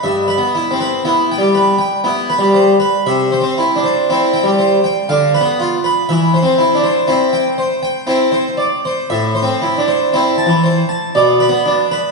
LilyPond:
<<
  \new Staff \with { instrumentName = "Harpsichord" } { \time 3/4 \key c \lydian \tempo 4 = 59 e''16 b'16 e'16 b'16 e'16 g''16 b'16 g''16 e'16 b'16 c''16 b'16 | e''16 c''16 e'16 c''16 e'16 g''16 c''16 g''16 f''16 b'16 f'16 b'16 | e''16 c''16 e'16 c''16 e'16 g''16 c''16 g''16 e'16 c''16 d''16 c''16 | \key a \minor e''16 c''16 e'16 c''16 e'16 a''16 c''16 a''16 d''16 b'16 d'16 b'16 | }
  \new Staff \with { instrumentName = "Harpsichord" } { \time 3/4 \key c \lydian \tuplet 3/2 { g,8 b8 c'8 b8 g8 r8 b8 g8 r8 } | \tuplet 3/2 { c8 c'8 d'8 c'8 g8 r8 d8 b8 r8 } | \tuplet 3/2 { e8 c'8 d'8 } c'8 r8 c'8 r8 | \key a \minor \tuplet 3/2 { a,8 c'8 d'8 c'8 e8 r8 b,8 b8 r8 } | }
>>